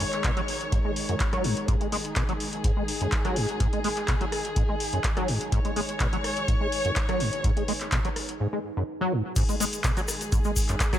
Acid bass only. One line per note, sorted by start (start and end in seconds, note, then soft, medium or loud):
0.00 0.04 F#2 medium
0.24 0.31 B2 medium
0.37 0.41 F#3 loud
0.72 0.79 G#2 medium
0.85 0.91 G#3 medium
1.09 1.15 F#2 medium
1.33 1.46 F#3 loud
1.44 1.55 G#2 medium
1.68 1.75 G#2 loud
1.81 1.87 G#3 medium
1.92 1.96 G#3 loud
2.16 2.23 B2 medium
2.29 2.33 F#3 loud
2.64 2.71 G#2 medium
2.77 2.83 G#3 medium
3.01 3.07 F#2 medium
3.25 3.38 F#3 loud
3.36 3.47 G#2 medium
3.60 3.67 G#2 loud
3.73 3.79 G#3 medium
3.84 3.88 G#3 loud
4.08 4.15 B2 medium
4.21 4.25 F#3 loud
4.56 4.63 G#2 medium
4.69 4.75 G#3 medium
4.93 4.99 F#2 medium
5.17 5.30 F#3 loud
5.28 5.39 G#2 medium
5.52 5.59 G#2 loud
5.65 5.71 G#3 medium
5.76 5.80 G#3 loud
6.00 6.07 B2 medium
6.13 6.17 F#3 loud
6.48 6.55 G#2 medium
6.61 6.67 G#3 medium
6.85 6.91 F#2 medium
7.09 7.22 F#3 loud
7.20 7.31 G#2 medium
7.44 7.51 G#2 loud
7.57 7.63 G#3 medium
7.68 7.72 G#3 loud
7.92 7.99 B2 medium
8.05 8.09 F#3 loud
8.40 8.47 G#2 medium
8.53 8.59 G#3 medium
8.77 8.83 F#2 medium
9.01 9.14 F#3 loud
9.12 9.23 G#2 medium
9.36 9.43 G#2 loud
9.49 9.55 G#3 medium
9.60 9.64 G#3 loud
9.84 9.91 B2 medium
9.97 10.01 F#3 loud
10.32 10.39 G#2 medium
10.45 10.51 G#3 medium
10.69 10.75 F#2 medium
10.93 10.99 F#3 loud